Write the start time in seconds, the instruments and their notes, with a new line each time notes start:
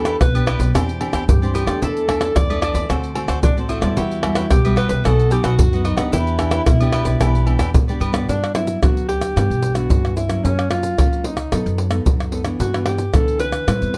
Already playing: upright bass E2, nylon-string guitar E3 B3 D4 G4, alto saxophone A4
0.05 cavaquinho E4 G4 B4 D5, pandeiro, tamborim, shaker
0.21 upright bass B1, nylon-string guitar B2, alto saxophone B4, pandeiro, tamborim, shaker, surdo
0.34 nylon-string guitar B3 D4 G4, cavaquinho G4 B4 D5, pandeiro, high agogo, shaker
0.46 cavaquinho E4 G4 B4 D5, alto saxophone B4, pandeiro, tamborim, high agogo
0.59 upright bass B1, cavaquinho G4 B4 D5, pandeiro, shaker, surdo
0.74 upright bass E2, nylon-string guitar E3 C4 D4 G4, cavaquinho E4 G4 C5 D5, pandeiro, tamborim, low agogo, shaker, surdo
0.89 pandeiro, shaker
1.00 nylon-string guitar C4 D4 G4, cavaquinho E4 G4 C5 D5, pandeiro, low agogo
1.13 upright bass E2, cavaquinho E4 G4 C5 D5, pandeiro, tamborim, low agogo, shaker, surdo
1.28 upright bass G2, nylon-string guitar E3, alto saxophone G4, pandeiro, shaker, surdo
1.42 nylon-string guitar C4 D4 G4, cavaquinho G4 C5 D5, pandeiro, shaker
1.54 cavaquinho E4 G4 C5 D5, alto saxophone G4, pandeiro, high agogo, shaker
1.66 upright bass E2, nylon-string guitar A3 D4 A4, cavaquinho G4 C5 D5, pandeiro, tamborim, shaker, surdo
1.82 upright bass E2, nylon-string guitar E3, cavaquinho D4 A4 D5 E5, alto saxophone A4, pandeiro, shaker, surdo
1.97 pandeiro, shaker
2.08 nylon-string guitar A3 D4 A4, cavaquinho D4 A4 D5 E5, pandeiro, tamborim, low agogo, surdo
2.21 cavaquinho D4 A4 D5 E5, pandeiro, tamborim, shaker
2.36 upright bass E2, nylon-string guitar E3, alto saxophone D5, pandeiro, tamborim, shaker, surdo
2.50 nylon-string guitar A3 D4 A4, cavaquinho A4 D5 E5, pandeiro, high agogo, shaker
2.61 cavaquinho D4 A4 D5 E5, alto saxophone D5, pandeiro, tamborim, high agogo, shaker
2.74 upright bass E2, cavaquinho A4 D5 E5, pandeiro, shaker, surdo
2.89 upright bass D2, nylon-string guitar D3 A3 C4 F#4, cavaquinho F#4 A4 C5 D5, pandeiro, tamborim, low agogo, shaker, surdo
3.04 pandeiro, shaker
3.15 nylon-string guitar A3 C4 F#4, cavaquinho F#4 A4 C5 D5, pandeiro, low agogo
3.28 upright bass D2, cavaquinho F#4 A4 C5 D5, pandeiro, tamborim, low agogo, shaker, surdo
3.43 upright bass A1, nylon-string guitar A2, alto saxophone D4, pandeiro, shaker, surdo
3.57 nylon-string guitar A3 C4 F#4, cavaquinho A4 C5 D5, pandeiro, shaker
3.69 alto saxophone E4, cavaquinho F#4 A4 C5 D5, pandeiro, high agogo, shaker
3.81 upright bass D#2, nylon-string guitar G3 B3 F#4, cavaquinho A4 C5 D5, pandeiro, tamborim, shaker, surdo
3.97 upright bass E2, nylon-string guitar E3, cavaquinho F#4 G4 B4 E5, pandeiro, shaker, surdo
4.11 pandeiro, shaker
4.23 nylon-string guitar G3 B3 F#4, cavaquinho F#4 G4 B4 E5, pandeiro, tamborim, low agogo, surdo
4.35 cavaquinho F#4 G4 B4 E5, pandeiro, tamborim, shaker
4.51 upright bass B1, nylon-string guitar B2, alto saxophone G4, pandeiro, tamborim, shaker, surdo
4.65 nylon-string guitar G3 B3 F#4, cavaquinho G4 B4 E5, pandeiro, high agogo, shaker
4.76 cavaquinho F#4 G4 B4 E5, alto saxophone B4, pandeiro, tamborim, high agogo
4.89 upright bass C2, cavaquinho G4 B4 E5, alto saxophone B4, pandeiro, shaker, surdo
5.04 upright bass B1, nylon-string guitar B2 F#3 B3 D#4, cavaquinho F#4 B4 D#5 F#5, alto saxophone A4, pandeiro, tamborim, low agogo, shaker, surdo
5.19 pandeiro, shaker
5.30 nylon-string guitar F#3 B3 D#4, cavaquinho F#4 B4 D#5 F#5, alto saxophone G4, pandeiro, low agogo, shaker
5.43 upright bass B1, cavaquinho F#4 B4 D#5 F#5, alto saxophone F#4, pandeiro, tamborim, low agogo, shaker, surdo
5.59 nylon-string guitar F#2, upright bass F#2, pandeiro, shaker, surdo
5.73 nylon-string guitar F#3 B3 D#4, cavaquinho B4 D#5 F#5, pandeiro, shaker
5.84 alto saxophone D#4, cavaquinho F#4 B4 D#5 F#5, pandeiro, high agogo
5.97 upright bass D#2, nylon-string guitar B3 D4 G4, cavaquinho B4 D#5 F#5, pandeiro, tamborim, shaker, surdo
6.12 upright bass E2, nylon-string guitar E3, cavaquinho E4 G4 B4 D5, alto saxophone E4, pandeiro, shaker, surdo
6.27 pandeiro, shaker
6.38 nylon-string guitar B3 D4 G4, cavaquinho E4 G4 B4 D5, pandeiro, tamborim, low agogo, shaker, surdo
6.51 cavaquinho E4 G4 B4 D5, pandeiro, tamborim, shaker
6.66 upright bass B1, nylon-string guitar B2, pandeiro, tamborim, shaker, surdo
6.80 nylon-string guitar B3 D4 G4, cavaquinho G4 B4 D5, pandeiro, high agogo, shaker
6.92 cavaquinho E4 G4 B4 D5, pandeiro, tamborim, high agogo
7.05 upright bass B1, cavaquinho G4 B4 D5, pandeiro, shaker, surdo
7.20 upright bass B1, nylon-string guitar E3 B3 D4 G4, cavaquinho E4 G4 B4 D5, pandeiro, tamborim, low agogo, shaker, surdo
7.35 pandeiro, shaker
7.46 nylon-string guitar B3 D4 G4, cavaquinho E4 G4 B4 D5, pandeiro, low agogo, surdo
7.59 upright bass E2, cavaquinho E4 G4 B4 D5, pandeiro, tamborim, low agogo, shaker, surdo
7.74 upright bass A2, nylon-string guitar B2, pandeiro, shaker, surdo
7.88 nylon-string guitar B3 D4 G4, cavaquinho G4 B4 D5, pandeiro, shaker
8.00 upright bass G2, cavaquinho E4 G4 B4 D5, pandeiro, high agogo
8.13 nylon-string guitar B3 D4 F#4, cavaquinho G4 B4 D5, pandeiro, tamborim, shaker, surdo
8.28 upright bass G2, nylon-string guitar G2, alto saxophone D4, pandeiro, shaker, surdo
8.44 pandeiro, tamborim, shaker
8.55 nylon-string guitar F#3 B3 D4, alto saxophone E4, pandeiro, tamborim, shaker
8.67 pandeiro, shaker
8.82 upright bass D2, nylon-string guitar D3 F#3 B3 D4, alto saxophone F#4, pandeiro, tamborim, shaker, surdo
8.97 pandeiro, shaker
9.09 alto saxophone G4, pandeiro
9.21 pandeiro, tamborim, shaker
9.36 nylon-string guitar G2 E3 B3 D4, upright bass G2, pandeiro, tamborim, shaker, surdo
9.50 upright bass B1, pandeiro, shaker
9.63 pandeiro, shaker
9.74 nylon-string guitar E3 B3 D4, alto saxophone F#4, pandeiro, tamborim, shaker
9.90 nylon-string guitar G2, upright bass G2, pandeiro, shaker, surdo
10.05 pandeiro, tamborim, shaker
10.16 alto saxophone E4, pandeiro, shaker
10.28 nylon-string guitar F#3 A#3 C#4, pandeiro, tamborim, shaker
10.44 nylon-string guitar F#2, upright bass F#2, alto saxophone C#4, pandeiro, shaker, surdo
10.59 pandeiro, tamborim, shaker
10.70 nylon-string guitar F#3 A#3 C#4, alto saxophone F4, pandeiro, tamborim, shaker
10.83 pandeiro, shaker
10.98 upright bass C#2, nylon-string guitar C#3 F#3 A#3 C#4, pandeiro, tamborim, shaker, surdo
11.13 pandeiro, shaker
11.24 alto saxophone D#4, pandeiro
11.37 pandeiro, tamborim, shaker
11.52 upright bass F#2, nylon-string guitar F#3 B3 D#4 A4, pandeiro, tamborim, shaker, surdo
11.66 upright bass F#2, pandeiro, shaker
11.78 pandeiro
11.90 nylon-string guitar B3 D#4 A4, pandeiro, tamborim, shaker
12.05 upright bass F#2, nylon-string guitar F#3, pandeiro, shaker, surdo
12.20 pandeiro, tamborim, shaker
12.32 nylon-string guitar B3 D#4 A4, pandeiro
12.44 nylon-string guitar E3 B3 D4, pandeiro, tamborim, shaker
12.59 nylon-string guitar G2, upright bass G2, alto saxophone F#4, pandeiro, shaker, surdo
12.73 nylon-string guitar E3 B3 D4, pandeiro, tamborim, shaker
12.85 nylon-string guitar E3 B3 D4, alto saxophone G4, pandeiro, tamborim
12.98 pandeiro, shaker
13.14 upright bass D2, nylon-string guitar D3 E3 B3 D4, alto saxophone A4, pandeiro, tamborim, shaker, surdo
13.28 pandeiro, shaker
13.39 alto saxophone B4, pandeiro, shaker
13.52 pandeiro, tamborim, shaker
13.67 nylon-string guitar A2 G3 C4 E4, upright bass A2, pandeiro, tamborim, shaker, surdo
13.82 upright bass E2, pandeiro, shaker
13.94 pandeiro